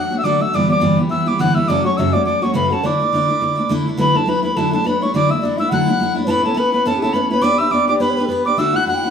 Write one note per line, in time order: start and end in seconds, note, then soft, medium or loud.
0.00 0.11 F#3 soft
0.00 0.12 A3 medium
0.00 0.11 D4 medium
0.00 0.20 F#5 medium
0.00 0.18 F#6 loud
0.10 0.24 A3 soft
0.10 0.24 D4 medium
0.10 0.24 F#4 medium
0.18 0.24 E5 medium
0.18 0.25 E6 medium
0.23 0.40 D3 medium
0.23 0.41 F#3 medium
0.23 0.41 A3 medium
0.23 0.40 D4 medium
0.23 0.38 F#4 medium
0.23 0.43 D5 medium
0.23 0.42 D6 loud
0.39 0.54 A3 soft
0.39 0.54 D4 medium
0.39 0.53 F#4 medium
0.39 0.53 E5 medium
0.39 0.56 E6 loud
0.53 0.70 G2 medium
0.53 0.70 D3 medium
0.53 0.70 E3 medium
0.53 0.68 G3 medium
0.53 0.68 B3 medium
0.53 0.66 E4 medium
0.53 0.68 D5 medium
0.53 0.70 D6 loud
0.67 0.80 E3 soft
0.67 0.80 G3 soft
0.67 0.81 B3 soft
0.67 0.81 E4 soft
0.67 0.96 D5 medium
0.67 0.97 D6 medium
0.80 0.98 G2 medium
0.80 0.98 D3 medium
0.80 0.98 E3 medium
0.80 0.98 G3 medium
0.80 0.98 B3 medium
0.80 0.96 E4 medium
0.97 1.08 E3 soft
0.97 1.09 G3 soft
0.97 1.11 B3 soft
0.97 1.10 E4 soft
1.09 1.27 E3 medium
1.09 1.27 G3 soft
1.09 1.26 B3 medium
1.09 1.25 E4 medium
1.09 1.26 E5 medium
1.09 1.29 E6 loud
1.26 1.39 E3 soft
1.26 1.39 G3 medium
1.26 1.40 B3 medium
1.26 1.39 E4 medium
1.26 1.42 D6 medium
1.39 1.56 G2 medium
1.39 1.56 D3 medium
1.39 1.56 E3 medium
1.39 1.56 G3 medium
1.39 1.55 B3 medium
1.39 1.53 E4 medium
1.39 1.55 F#5 medium
1.39 1.56 F#6 medium
1.54 1.69 E3 soft
1.54 1.69 G3 soft
1.54 1.69 B3 soft
1.54 1.68 E4 soft
1.54 1.71 E5 medium
1.54 1.69 E6 loud
1.68 1.85 F#2 medium
1.68 1.85 C#3 medium
1.68 1.85 F#3 medium
1.68 1.85 A3 medium
1.68 1.84 C#4 medium
1.68 1.83 F#4 medium
1.68 1.84 D5 medium
1.68 1.85 D6 loud
1.84 1.97 F#3 soft
1.84 1.98 A3 soft
1.84 1.98 C#4 soft
1.84 1.97 F#4 soft
1.84 2.00 C#5 medium
1.84 1.98 C#6 medium
1.97 2.14 F#2 medium
1.97 2.14 C#3 medium
1.97 2.14 F#3 medium
1.97 2.14 A3 medium
1.97 2.13 C#4 medium
1.97 2.12 F#4 medium
1.97 2.14 E5 medium
1.97 2.14 E6 medium
2.13 2.24 F#3 soft
2.13 2.25 A3 medium
2.13 2.27 C#4 soft
2.13 2.26 F#4 medium
2.13 2.25 D5 medium
2.13 2.24 D6 medium
2.25 2.42 F#3 medium
2.25 2.43 A3 medium
2.25 2.42 C#4 medium
2.25 2.41 D5 medium
2.25 2.44 D6 medium
2.29 2.41 F#4 medium
2.42 2.53 F#3 soft
2.42 2.54 A3 soft
2.42 2.54 C#4 medium
2.42 2.54 F#4 medium
2.42 2.57 C#5 medium
2.42 2.54 C#6 medium
2.53 2.71 F#2 medium
2.53 2.71 C#3 medium
2.53 2.71 F#3 medium
2.53 2.71 A3 medium
2.53 2.71 C#4 medium
2.53 2.69 F#4 medium
2.53 2.72 B4 medium
2.53 2.68 B5 medium
2.68 2.83 F#4 medium
2.68 2.85 A4 medium
2.68 2.74 B5 medium
2.72 2.83 F#3 soft
2.72 2.83 A3 soft
2.72 2.84 C#4 medium
2.72 2.87 A5 medium
2.83 3.00 D3 medium
2.83 3.00 A3 medium
2.83 3.00 D4 medium
2.83 2.98 E4 medium
2.83 3.70 D5 medium
2.83 3.71 D6 medium
2.99 3.13 A3 soft
2.99 3.13 D4 soft
2.99 3.12 E4 soft
3.13 3.29 D3 medium
3.13 3.29 A3 medium
3.13 3.28 D4 medium
3.13 3.27 E4 medium
3.28 3.40 A3 soft
3.28 3.41 D4 soft
3.28 3.41 E4 medium
3.40 3.57 D3 soft
3.40 3.57 A3 medium
3.40 3.56 D4 medium
3.40 3.54 E4 medium
3.56 3.69 A3 medium
3.56 3.70 D4 medium
3.56 3.69 E4 medium
3.69 3.86 D3 medium
3.69 3.87 A3 medium
3.69 3.87 D4 medium
3.69 3.85 E4 loud
3.86 3.97 A3 soft
3.86 3.98 D4 medium
3.86 3.99 E4 medium
3.97 4.15 D3 medium
3.97 4.15 F#3 medium
3.97 4.15 A3 medium
3.97 4.14 D4 medium
3.97 4.13 E4 medium
3.97 4.18 B4 medium
3.97 4.18 B5 medium
4.14 4.26 A3 soft
4.14 4.27 D4 medium
4.14 4.27 E4 medium
4.14 4.26 A4 medium
4.14 4.30 A5 medium
4.26 4.43 F#3 medium
4.26 4.44 A3 medium
4.26 4.43 D4 medium
4.26 4.41 E4 medium
4.26 4.43 B4 medium
4.26 4.43 B5 medium
4.43 4.56 A3 soft
4.43 4.57 D4 soft
4.43 4.56 E4 medium
4.43 4.53 B4 medium
4.43 4.58 B5 medium
4.54 4.73 D3 medium
4.54 4.73 F#3 medium
4.54 4.73 A3 medium
4.54 4.71 A4 medium
4.54 4.73 A5 medium
4.58 4.72 D4 medium
4.58 4.70 E4 medium
4.71 4.84 A3 medium
4.71 4.85 D4 medium
4.71 4.85 E4 medium
4.71 4.84 A4 medium
4.71 4.88 A5 medium
4.84 5.01 F#3 medium
4.84 5.02 A3 medium
4.84 5.02 D4 medium
4.84 5.00 E4 medium
4.84 5.00 B4 medium
4.84 5.04 B5 medium
5.01 5.14 A3 soft
5.01 5.14 D4 medium
5.01 5.14 E4 medium
5.01 5.13 C#5 medium
5.01 5.14 C#6 medium
5.14 5.30 D3 medium
5.14 5.31 F#3 medium
5.14 5.31 A3 medium
5.14 5.30 D4 medium
5.14 5.28 E4 medium
5.14 5.32 D5 medium
5.14 5.32 D6 loud
5.29 5.42 A3 soft
5.29 5.42 D4 soft
5.29 5.42 E4 medium
5.29 5.40 E5 medium
5.29 5.41 E6 medium
5.41 5.59 F#3 medium
5.41 5.59 A3 medium
5.41 5.58 D4 medium
5.41 5.59 D5 medium
5.41 5.43 E6 medium
5.45 5.57 E4 medium
5.57 5.71 A3 soft
5.57 5.72 D4 soft
5.57 5.71 E4 medium
5.57 5.71 E5 medium
5.57 5.72 E6 loud
5.69 5.88 D3 medium
5.69 5.88 F#3 medium
5.69 5.88 A3 medium
5.69 5.87 D4 medium
5.69 6.15 F#5 medium
5.69 6.14 F#6 loud
5.74 5.85 E4 medium
5.86 5.99 A3 soft
5.86 6.00 D4 medium
5.86 6.00 E4 medium
6.00 6.16 F#3 medium
6.00 6.17 A3 medium
6.00 6.15 D4 medium
6.00 6.13 E4 medium
6.15 6.27 A3 soft
6.15 6.28 D4 medium
6.15 6.28 E4 medium
6.24 6.44 A2 medium
6.24 6.45 A3 medium
6.24 6.44 B4 medium
6.24 6.28 C#5 medium
6.24 6.30 A5 medium
6.28 6.44 B3 medium
6.28 6.44 C#4 medium
6.28 6.42 E4 loud
6.28 6.44 B5 loud
6.43 6.56 B3 soft
6.43 6.55 C#4 soft
6.43 6.56 E4 soft
6.43 6.61 A4 medium
6.43 6.59 A5 medium
6.54 6.72 A3 medium
6.54 6.72 B3 medium
6.54 6.73 C#4 medium
6.54 6.71 E4 medium
6.54 6.72 B5 medium
6.60 6.73 B4 medium
6.72 6.86 B3 medium
6.72 6.86 C#4 soft
6.72 6.85 E4 soft
6.72 6.88 B4 medium
6.72 6.85 B5 loud
6.86 7.02 A2 medium
6.86 7.03 A3 medium
6.86 7.02 B3 medium
6.86 7.03 C#4 medium
6.86 7.01 E4 medium
6.86 6.97 A4 medium
6.86 7.01 A5 medium
6.98 7.04 G4 medium
6.98 7.14 A5 medium
7.02 7.14 B3 medium
7.02 7.13 C#4 medium
7.02 7.15 E4 medium
7.02 7.14 A4 medium
7.13 7.31 A3 medium
7.13 7.30 B3 medium
7.13 7.31 C#4 medium
7.13 7.29 E4 medium
7.13 7.21 B4 medium
7.13 7.29 B5 medium
7.29 7.40 B3 soft
7.29 7.43 E4 medium
7.29 7.46 B4 medium
7.29 7.43 B5 loud
7.33 7.42 C#4 soft
7.41 7.59 B3 medium
7.41 7.59 D4 medium
7.41 7.58 G4 medium
7.41 7.57 B4 medium
7.41 7.59 D5 medium
7.41 7.60 D6 loud
7.58 7.71 D4 soft
7.58 7.72 G4 soft
7.58 7.71 B4 medium
7.58 7.71 E5 medium
7.58 7.73 E6 loud
7.71 7.88 B3 medium
7.71 7.89 D4 medium
7.71 7.88 G4 medium
7.71 7.86 B4 medium
7.71 7.88 D5 medium
7.71 7.87 D6 loud
7.87 8.00 D4 soft
7.87 8.01 G4 medium
7.87 8.00 B4 medium
7.87 8.02 D5 medium
7.87 7.94 D6 loud
8.00 8.17 B3 medium
8.00 8.17 D4 medium
8.00 8.17 G4 medium
8.00 8.12 B4 medium
8.00 8.16 B4 medium
8.00 8.25 B5 loud
8.10 8.18 C#5 medium
8.16 8.28 D4 medium
8.16 8.29 G4 medium
8.16 8.27 B4 medium
8.16 8.30 B4 medium
8.25 8.45 B3 medium
8.25 8.30 A4 medium
8.25 8.46 B4 medium
8.30 8.46 D4 medium
8.30 8.46 G4 medium
8.30 8.44 B4 medium
8.45 8.57 D4 soft
8.45 8.59 G4 soft
8.45 8.58 B4 medium
8.45 8.59 D5 medium
8.45 8.60 D6 loud
8.57 8.74 D3 medium
8.57 8.74 A3 medium
8.57 8.75 D4 medium
8.57 8.73 E4 medium
8.57 8.75 F#4 medium
8.57 8.76 E5 medium
8.57 8.77 E6 loud
8.74 8.86 D4 soft
8.74 8.87 E4 medium
8.74 8.87 F#4 soft
8.74 8.87 F#5 medium
8.74 8.87 F#6 loud
8.86 9.03 A3 medium
8.86 9.03 D4 medium
8.86 9.02 E4 medium
8.86 9.03 F#4 medium
8.86 8.96 F#5 medium
8.86 9.10 F#6 loud
8.94 9.06 G5 medium
9.03 9.10 D4 soft
9.03 9.10 E4 soft
9.03 9.10 F#4 soft
9.03 9.10 F#5 medium